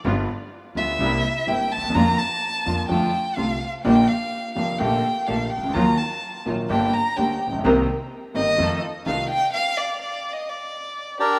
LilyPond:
<<
  \new Staff \with { instrumentName = "Violin" } { \time 4/4 \key bes \major \tempo 4 = 127 r4. e''4. g''8 a''8 | bes''8 a''4. g''4 f''8. r16 | g''8 f''4 f''8 g''4 f''8 g''8 | bes''8 a''4 r8 g''8 bes''8 g''8. r16 |
r4. ees''4 r8 f''8 g''8 | f''8 d''8 \tuplet 3/2 { d''4 ees''8 } d''4. g'8 | }
  \new Staff \with { instrumentName = "Bandoneon" } { \time 4/4 \key bes \major r1 | r1 | r1 | r1 |
r1 | r2. r8 <d' g' bes'>8 | }
  \new Staff \with { instrumentName = "String section" } { \time 4/4 \key bes \major <g b f'>8 r4 <g b f'>8 <bes c' e'>8 r8 <bes c' e'>8 r8 | <bes d' f'>8 r4 <bes d' f'>8 <a d' f'>8 r8 <a d' f'>8 r8 | <bes d' g'>8 r4 <bes d' g'>8 <bes g' a'>8 r8 <bes g' a'>8 r8 | <ges ees' f'>8 r4 <ges ees' f'>8 <bes d' g'>8 r8 <bes d' g'>8 r8 |
<c' ees' bes'>8 r4 <c' ees' bes'>8 <ees' f' a'>8 r8 <ees' f' a'>8 r8 | r1 | }
  \new Staff \with { instrumentName = "Grand piano" } { \clef bass \time 4/4 \key bes \major <g,, g, d g b f'>8 r4 <d, d g b f'>8 <c, c g bes e'>8 r8 <g,, g, c g bes e'>8 r32 d,32 ees,32 e,32 | <f, d f bes f'>8 r4 <f, d f bes f'>8 <f, d f a c' f'>8 r8 <c, c d a c' f'>8 r8 | <bes,, bes, d g bes f'>8 r4 <f,, f, d g bes f'>8 <bes,, bes, d a bes g'>8 r8 <bes,, bes, d a bes g'>8 r32 c,32 des,32 d,32 | <ees, ees ges bes f'>8 r4 <bes,, bes, ees ges bes f'>8 <g,, g, d g bes g'>8 r8 <d, d g bes g'>8 r32 a,,32 bes,,32 ces,32 |
<c, c ees bes c' g'>8 r4 <g,, g, ees bes c' g'>8 <f, ees f a c' f'>8 r8 <c, c ees a c' f'>8 r8 | r1 | }
  \new Staff \with { instrumentName = "Upright bass" } { \clef bass \time 4/4 \key bes \major g,,16. r4 r32 d,16. r32 c,16. r8 r32 g,,16. r16 d,32 ees,32 e,32 | f,16. r4 r32 f,16. r32 f,16. r8 r32 c,16. r8 r32 | bes,,16. r4 r32 f,,16. r32 bes,,16. r8 r32 bes,,16. r16 c,32 des,32 d,32 | ees,16. r4 r32 bes,,16. r32 g,,16. r8 r32 d,16. r16 a,,32 bes,,32 ces,32 |
c,16. r4 r32 g,,16. r32 f,16. r8 r32 c,16. r8 r32 | r1 | }
>>